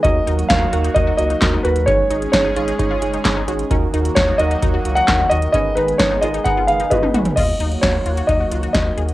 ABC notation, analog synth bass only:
X:1
M:4/4
L:1/8
Q:1/4=131
K:Ebm
V:1 name="Analog synth bass" clef=bass
E,, E,, E,, E,, E,, D,, E,, E,, | A,,, A,,, A,,, A,,, A,,, G,,, A,,, A,,, | E,, E,, E,, E,, E,, D,, E,, E,, | A,,, A,,, A,,, A,,, A,,, G,,, A,,, A,,, |
E,, E,, E,, E,, E,, D,, E,, E,, |]